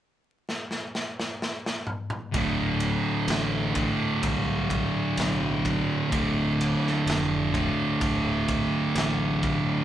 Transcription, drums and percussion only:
0.49 snare
0.71 snare
0.95 snare
1.20 snare
1.42 snare
1.66 snare
1.87 mid tom
2.10 mid tom
2.34 kick, ride
2.80 ride
3.28 snare, ride
3.75 kick, ride
4.23 kick, ride
4.70 kick, ride
5.17 snare, ride
5.65 kick, ride
6.12 kick, ride
6.61 ride
6.87 snare
7.07 snare, ride
7.54 kick, ride
8.01 kick, ride
8.48 kick, ride
8.96 snare, ride
9.43 kick, ride

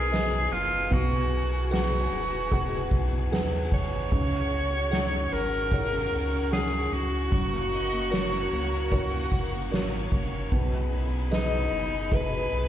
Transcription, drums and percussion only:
0.13 snare, ride, tambourine
0.52 ride
0.92 kick, ride
1.33 ride
1.71 snare, ride, tambourine
2.13 ride
2.52 kick, ride
2.91 kick, ride
3.32 snare, ride, tambourine
3.72 kick, ride
4.12 kick, ride
4.53 ride
4.92 snare, ride, tambourine
5.32 ride
5.71 kick, ride
6.12 ride
6.52 snare, ride, tambourine
6.92 ride
7.32 kick, ride
7.73 ride
8.11 snare, ride, tambourine
8.52 ride
8.91 kick, ride
9.32 kick, ride
9.72 snare, ride, tambourine
10.12 kick, ride
10.52 kick, ride
10.92 ride
11.31 snare, ride, tambourine
11.72 ride
12.11 kick, ride
12.51 ride

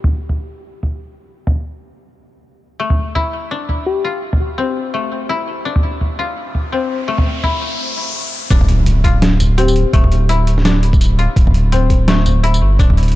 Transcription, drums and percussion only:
0.04 mid tom
0.29 mid tom
0.83 mid tom
1.47 mid tom
2.90 mid tom
3.16 mid tom
3.69 mid tom
4.33 mid tom
5.76 mid tom
6.01 mid tom
6.55 mid tom
7.18 mid tom
7.44 mid tom
8.50 kick, closed hi-hat
8.61 mid tom
8.68 closed hi-hat
8.86 closed hi-hat, mid tom
9.04 kick, closed hi-hat
9.22 snare, closed hi-hat
9.40 closed hi-hat, mid tom, tambourine
9.58 closed hi-hat
9.68 tambourine
9.76 closed hi-hat
9.93 kick, closed hi-hat
10.04 mid tom
10.12 closed hi-hat
10.29 closed hi-hat
10.47 closed hi-hat
10.58 snare
10.65 snare, closed hi-hat
10.83 closed hi-hat
10.93 kick, tambourine
11.01 closed hi-hat, tambourine
11.19 closed hi-hat
11.36 kick, closed hi-hat
11.47 mid tom
11.54 closed hi-hat
11.72 closed hi-hat, mid tom
11.90 kick, closed hi-hat
12.08 snare, closed hi-hat
12.26 closed hi-hat, mid tom, tambourine
12.44 closed hi-hat
12.54 tambourine
12.79 kick, closed hi-hat
12.90 mid tom
12.97 closed hi-hat
13.03 closed hi-hat
13.08 closed hi-hat
13.12 closed hi-hat

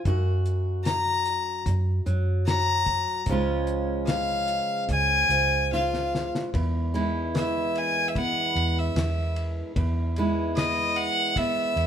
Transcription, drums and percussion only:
0.05 kick, closed hi-hat
0.46 closed hi-hat
0.85 snare, closed hi-hat
1.26 closed hi-hat
1.66 kick, closed hi-hat
2.06 closed hi-hat
2.47 snare, closed hi-hat
2.86 kick, closed hi-hat
3.26 kick, closed hi-hat
3.67 closed hi-hat
4.07 snare, closed hi-hat
4.48 closed hi-hat
4.89 kick, closed hi-hat
5.30 closed hi-hat
5.73 snare
5.94 snare
6.15 snare
6.35 snare
6.54 kick, ride
6.95 ride
7.35 snare, ride
7.75 ride
8.15 kick, ride
8.56 ride
8.96 snare, ride
9.36 ride
9.76 kick, ride
10.16 ride
10.57 snare, ride
10.96 ride
11.36 kick, ride
11.77 ride

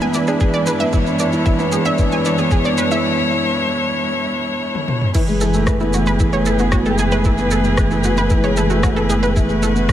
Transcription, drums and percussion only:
0.01 shaker
0.14 shaker
0.27 shaker
0.40 kick, shaker
0.54 shaker
0.66 shaker
0.80 shaker
0.93 kick, shaker
1.06 shaker
1.19 shaker
1.32 shaker
1.46 kick, shaker
1.59 shaker
1.72 shaker
1.85 shaker
1.98 kick, shaker
2.11 shaker
2.25 shaker
2.38 shaker
2.51 kick, shaker
2.64 shaker
2.77 shaker
2.91 shaker
4.75 high tom
4.88 mid tom
5.01 mid tom
5.15 kick, crash, shaker
5.28 shaker
5.41 shaker
5.54 shaker
5.67 kick, cross-stick, shaker
5.80 shaker
5.93 shaker
6.06 shaker
6.19 kick, shaker
6.33 shaker
6.46 shaker
6.59 shaker
6.72 kick, cross-stick, shaker
6.85 shaker
6.98 shaker
7.11 shaker
7.24 kick, shaker
7.38 shaker
7.51 shaker
7.64 shaker
7.77 kick, cross-stick, shaker
7.91 shaker
8.04 shaker
8.17 shaker
8.30 kick, shaker
8.44 shaker
8.57 shaker
8.70 shaker
8.83 kick, cross-stick, shaker
8.96 shaker
9.10 shaker
9.23 shaker
9.36 kick, shaker
9.49 shaker
9.63 shaker
9.76 shaker
9.89 kick, cross-stick, shaker

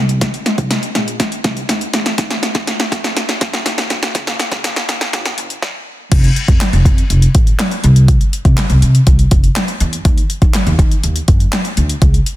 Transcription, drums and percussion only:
0.09 closed hi-hat
0.21 kick, snare, closed hi-hat
0.34 closed hi-hat
0.46 snare, closed hi-hat
0.58 kick, closed hi-hat
0.71 snare, closed hi-hat
0.83 closed hi-hat
0.95 snare, closed hi-hat
1.08 closed hi-hat
1.20 kick, snare, closed hi-hat
1.32 closed hi-hat
1.44 kick, snare, closed hi-hat
1.57 closed hi-hat
1.69 snare, closed hi-hat
1.81 closed hi-hat
1.93 snare, closed hi-hat
2.06 snare, closed hi-hat
2.18 kick, snare, closed hi-hat
2.30 snare, closed hi-hat
2.43 snare, closed hi-hat
2.55 kick, snare, closed hi-hat
2.67 snare, closed hi-hat
2.80 snare, closed hi-hat
2.92 kick, snare, closed hi-hat
3.04 snare, closed hi-hat
3.17 snare, closed hi-hat
3.29 snare, closed hi-hat
3.41 kick, snare, closed hi-hat
3.53 snare, closed hi-hat
3.66 snare, closed hi-hat
3.78 snare, closed hi-hat
3.90 snare, closed hi-hat
4.03 snare, closed hi-hat
4.15 kick, snare, closed hi-hat
4.27 snare, closed hi-hat
4.39 snare, closed hi-hat
4.52 kick, snare, closed hi-hat
4.64 snare, closed hi-hat
4.76 snare, closed hi-hat
4.89 snare, closed hi-hat
5.01 snare, closed hi-hat
5.13 snare, closed hi-hat
5.25 snare, closed hi-hat
5.38 closed hi-hat
5.50 closed hi-hat
5.62 kick, snare
6.12 kick, closed hi-hat, crash
6.24 closed hi-hat
6.36 closed hi-hat
6.48 kick, closed hi-hat
6.61 snare, clap, closed hi-hat
6.73 closed hi-hat
6.85 kick, closed hi-hat
6.98 closed hi-hat
7.10 closed hi-hat
7.22 closed hi-hat
7.35 kick, closed hi-hat
7.47 closed hi-hat
7.59 snare, clap, closed hi-hat
7.71 closed hi-hat
7.84 closed hi-hat
7.96 closed hi-hat
8.08 kick, closed hi-hat
8.21 closed hi-hat
8.33 closed hi-hat
8.45 kick, closed hi-hat
8.57 snare, clap, closed hi-hat
8.70 closed hi-hat
8.82 closed hi-hat
8.95 closed hi-hat
9.07 kick, closed hi-hat
9.19 closed hi-hat
9.31 kick, closed hi-hat
9.44 closed hi-hat
9.56 snare, clap, closed hi-hat
9.68 closed hi-hat
9.80 closed hi-hat
9.93 closed hi-hat
10.05 kick, closed hi-hat
10.18 closed hi-hat
10.30 closed hi-hat
10.42 kick, closed hi-hat
10.54 snare, clap, closed hi-hat
10.67 closed hi-hat
10.79 kick, closed hi-hat
10.91 closed hi-hat
11.04 closed hi-hat
11.16 closed hi-hat
11.28 kick, closed hi-hat
11.40 closed hi-hat
11.52 snare, clap, closed hi-hat
11.65 closed hi-hat
11.77 closed hi-hat
11.89 closed hi-hat
12.02 kick, closed hi-hat
12.14 closed hi-hat
12.26 closed hi-hat

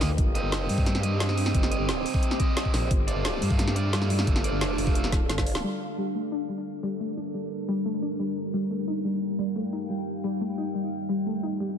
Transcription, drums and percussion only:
0.01 snare, open hi-hat
0.18 kick, closed hi-hat
0.35 closed hi-hat
0.52 snare, closed hi-hat
0.69 open hi-hat
0.78 kick
0.86 snare, closed hi-hat
0.95 snare
1.03 closed hi-hat
1.20 snare, closed hi-hat
1.29 snare
1.38 open hi-hat
1.46 snare
1.55 kick, closed hi-hat
1.63 snare
1.72 closed hi-hat
1.89 snare, closed hi-hat
2.06 open hi-hat
2.14 kick
2.23 closed hi-hat
2.31 snare
2.40 kick, closed hi-hat
2.57 snare, closed hi-hat
2.65 kick
2.74 snare, open hi-hat
2.91 kick, closed hi-hat
3.08 closed hi-hat
3.25 snare, closed hi-hat
3.42 open hi-hat
3.51 kick
3.59 snare, closed hi-hat
3.68 snare
3.76 closed hi-hat
3.93 snare, closed hi-hat
4.02 snare
4.10 open hi-hat
4.19 snare
4.27 kick, closed hi-hat
4.36 snare
4.44 closed hi-hat
4.61 snare, closed hi-hat
4.78 open hi-hat
4.87 kick
4.95 closed hi-hat
5.04 snare
5.12 kick, snare, closed hi-hat
5.29 snare, closed hi-hat
5.38 kick, snare
5.47 open hi-hat
5.55 snare

